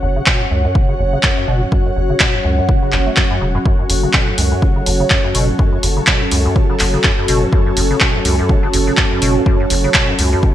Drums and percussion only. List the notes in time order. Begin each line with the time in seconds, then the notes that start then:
0.26 kick, clap
0.75 kick
1.23 kick, clap
1.72 kick
2.20 kick, clap
2.69 kick
2.92 clap
3.16 kick, clap
3.66 kick
3.90 open hi-hat
4.13 kick, clap
4.38 open hi-hat
4.62 kick
4.86 open hi-hat
5.10 kick, clap
5.35 open hi-hat
5.59 kick
5.83 open hi-hat
6.07 kick, clap
6.31 open hi-hat
6.56 kick
6.79 clap, open hi-hat
7.04 kick, clap
7.28 open hi-hat
7.53 kick
7.77 open hi-hat
8.00 kick, clap
8.25 open hi-hat
8.49 kick
8.73 open hi-hat
8.97 kick, clap
9.22 open hi-hat
9.46 kick
9.70 open hi-hat
9.94 kick, clap
10.19 open hi-hat
10.43 kick